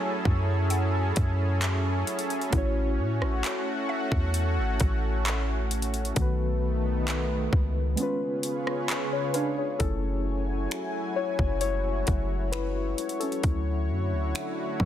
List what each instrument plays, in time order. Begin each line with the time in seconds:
Already playing: analog synth pad F#3 C#4 E4 G#4 A4, synth keys A3 C#4 E4 F#4 C#5, synth pluck G#5
0.25 808-style bass F#2, kick
0.70 synth pluck F#5, closed hi-hat
1.16 808-style bass F#2, kick, closed hi-hat
1.62 clap, closed hi-hat
2.07 closed hi-hat
2.19 closed hi-hat
2.30 closed hi-hat
2.41 closed hi-hat
2.50 808-style bass A1, synth keys A3 C#4 E4, analog synth pad A3 F#4, kick, closed hi-hat
2.56 synth keys F#4 C#5
2.99 808-style bass A2
3.22 808-style bass A1, cross-stick
3.44 clap, closed hi-hat
3.89 synth pluck E5
4.12 808-style bass E2, kick
4.34 closed hi-hat
4.58 808-style bass G#1
4.80 808-style bass A1, kick, closed hi-hat
5.26 clap, closed hi-hat
5.71 closed hi-hat
5.82 closed hi-hat
5.94 closed hi-hat
6.05 closed hi-hat
6.14 808-style bass B1, analog synth pad D#3 A3 B3, synth keys D#3 A3 B3, kick, closed hi-hat
6.20 synth keys F#4 B4
7.08 clap, closed hi-hat
7.53 808-style bass C#2, kick
7.96 analog synth pad C#3 F4 G#4 B4 C#5, synth keys G#3 B3 C#4, closed hi-hat
8.01 synth keys F4 B4
8.43 closed hi-hat
8.67 cross-stick
8.89 clap, closed hi-hat
9.13 synth keys G#4 C#5
9.34 synth keys D4 B4 F5, closed hi-hat
9.58 synth keys G#4 C#5
9.79 808-style bass F#1, analog synth pad F#3 E4 F#4 C#5 G#5, synth keys A3 C#4 E4 G#4 A4, kick, closed hi-hat
10.71 finger snap, closed hi-hat
11.16 synth keys E4 C#5
11.39 808-style bass F#1, kick
11.61 synth keys G#3 A3 E4 C#5, closed hi-hat
12.07 808-style bass F#1, kick, closed hi-hat
12.52 synth keys E4 B4, finger snap, closed hi-hat
12.98 closed hi-hat
13.09 closed hi-hat
13.20 synth keys C#4 A4, closed hi-hat
13.32 closed hi-hat
13.43 808-style bass D2, analog synth pad D3 A3 E4 F#4, synth keys F#3 E4, kick, closed hi-hat
13.90 808-style bass F#2
14.12 808-style bass D2
14.35 finger snap, closed hi-hat
14.80 808-style bass D3, kick